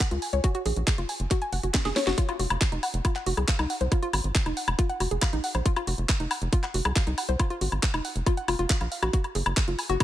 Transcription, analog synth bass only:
0.11 C#2
0.33 C#2
0.66 A#1
0.76 A#1
0.98 F#1
1.20 F#1
1.53 F#1
1.63 F#1
1.85 F#1
2.07 F#1
2.39 F1
2.50 F1
2.72 F1
2.94 F1
3.26 F1
3.37 C2
3.59 C2
3.81 C2
4.13 G#1
4.24 G#1
4.46 F1
4.68 F1
5.00 F1
5.11 F1
5.33 A#1
5.55 A#1
5.87 F1
5.98 F1
6.20 F1
6.42 F1
6.74 F1
6.85 C2
7.07 C2
7.29 C2
7.61 G#1
7.72 G#1
7.94 F1
8.16 F1
8.48 F1
8.59 F1
8.81 A#1
9.03 A#1
9.35 F#1
9.46 F#1
9.68 F#1
9.90 F#1

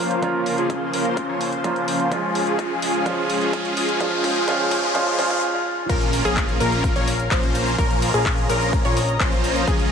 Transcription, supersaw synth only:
Already playing: F3 A#3 C#4 F4 C5
0.23 F3 A#3 C#4 F4 A#4
0.58 F3 A#3 C#4 F4 G#4
0.94 F3 A#3 C#4 F4 A#4
1.29 F3 A#3 C#4 F4 C#5
1.64 F3 A#3 C#4 F4 C5
2.12 F3 G#3 C#4 F4 G#4
2.47 F3 G#3 C#4 F4 G#4
2.82 F3 G#3 C#4 F4 G#4
3.06 F3 G#3 C#4 F4 G#4
3.41 F3 G#3 C#4 F4 G#4
3.77 F3 G#3 C#4 F4 G#4
4.01 F3 G#3 C#4 F4 G#4
4.36 F3 G#3 C#4 F4 G#4
4.48 F3 G#3 C#4 F4 G#4
4.83 F3 G#3 C#4 F4 G#4
4.95 F3 G#3 C#4 F4 G#4
5.19 F3 G#3 C#4 F4 G#4
5.90 F3 A#3 C#4 F4 A#4
6.25 F3 A#3 C#4 F4 G#4
6.60 F3 A#3 C#4 F4 A#4
6.96 F3 A#3 C#4 F4 C#5
7.31 F3 A#3 C#4 F4 C5
7.78 F3 A#3 C#4 F4 A#4
8.14 F3 A#3 C#4 F4 G#4
8.49 F3 A#3 C#4 F4 A#4
8.85 F3 A#3 C#4 F4 C#5
9.20 F3 A#3 C#4 F4 C5
9.68 F3 G#3 C#4 F4 G#4

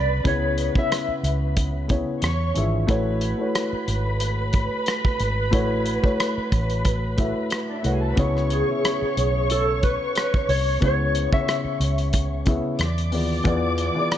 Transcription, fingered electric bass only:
Already playing: C2
0.25 C#2
1.08 muted fingered electric bass stroke
1.23 C#2
2.23 E2
2.57 G#1
2.89 A1
3.73 muted fingered electric bass stroke
3.88 G#1
5.20 G#1
5.53 A1
6.38 muted fingered electric bass stroke
6.52 A1
7.85 C2
8.18 C#2
9.02 muted fingered electric bass stroke
9.17 B1
10.49 C2
10.82 C#2
11.64 muted fingered electric bass stroke
11.80 C#2
12.79 E2
13.12 D#2
13.45 E2

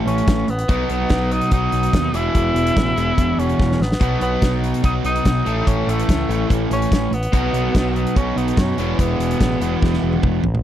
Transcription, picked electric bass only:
0.06 A1
0.27 A1
0.48 A1
0.68 B1
0.89 B1
1.10 B1
1.52 B1
1.73 B1
1.93 D#2
2.13 E1
2.35 E1
2.54 E1
2.77 A1
2.96 E1
3.17 E1
3.37 E1
3.60 E1
3.79 A1
4.00 B1
4.21 B1
4.42 B1
4.84 B1
5.04 B1
5.25 B1
5.46 A1
5.67 A1
5.87 A1
6.09 C#2
6.29 A1
6.50 A1
6.70 A1
6.92 A1
7.11 A1
7.33 B1
7.53 B1
7.75 B1
8.16 B1
8.36 B1
8.57 F#2
8.78 E1
8.99 E1
9.18 E1
9.40 A1
9.60 E1
9.82 E1
10.02 E1
10.23 E1
10.43 A1

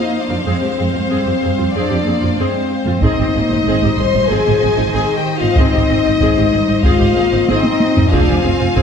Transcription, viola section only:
0.29 C4 F4
0.46 C4 G#4
0.62 C4 G4
0.78 C4 G#4
0.93 C4 F4
1.09 C4 G#4
1.26 C4 G4
1.42 C4 G#4
1.58 C4 F4
1.75 C4 G#4
1.90 C4 G4
2.06 C4 G#4
2.22 C4 F4
2.39 C4 G#4
2.86 C4 F4
3.03 C4 G#4
3.20 C4 G4
3.36 C4 G#4
3.51 C4 D#4
3.68 C4 G#4
3.83 C4 G4
3.98 C4 G#4
4.15 C4 D#4
4.31 C4 G#4
4.46 C4 G4
4.62 C4 G#4
4.77 C4 D#4
4.93 C4 G#4
5.42 C4 D#4
5.58 C4 G#4
5.73 C4 G4
5.90 C4 G#4
6.06 C4 D#4
6.21 C4 G#4
6.37 C4 G4
6.52 C4 G#4
6.68 C4 D#4
6.84 C4 G#4
6.99 C4 G4
7.15 C4 G#4
7.32 C4 D#4
7.49 C4 G#4
7.96 C4 D#4
8.12 C4 G#4
8.28 C4 G4
8.43 C4 G#4
8.60 C4 F4
8.76 C4 G#4

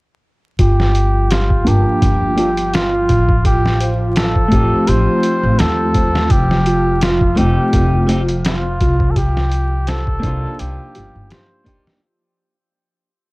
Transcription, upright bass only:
0.59 G1
1.67 G1
2.02 G1
3.09 A1
4.52 A1
4.88 A1
5.43 A1
5.60 D#2
6.31 F1
7.39 F1
7.73 F1
8.81 C2
10.23 C2
10.60 C2
10.96 G1
11.15 G1

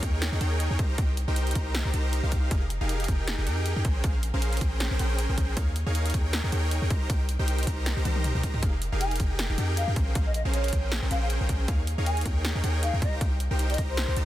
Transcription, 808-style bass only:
0.03 D#2
0.32 D#2
0.41 D#2
0.70 D#2
0.79 C2
0.98 C2
1.28 C2
1.55 C2
1.85 C2
1.94 C2
2.23 C2
2.51 F1
2.81 F1
3.08 F1
3.38 F1
3.47 F2
3.76 F2
3.85 A#1
4.04 A#1
4.34 A#1
4.61 A#1
4.91 A#1
5.00 A#1
5.29 A#1
5.38 A#1
5.57 D#2
5.86 D#2
6.14 D#2
6.44 D#2
6.52 D#2
6.82 D#2
6.91 C2
7.10 C2
7.39 C2
7.67 C2
7.97 C2
8.05 C2
8.35 C2
8.43 C2
8.63 F1
8.92 F1
9.20 F1
9.49 F1
9.58 F2
9.88 F2
9.96 A#1
10.15 A#1
10.45 A#1
10.73 A#1
11.02 A#1
11.11 A#1
11.41 A#1
11.49 A#1
11.68 D#2
11.98 D#2
12.25 D#2
12.55 D#2
12.64 D#2
12.93 D#2
13.02 C2
13.21 C2
13.51 C2
13.78 C2
14.08 C2
14.17 C2

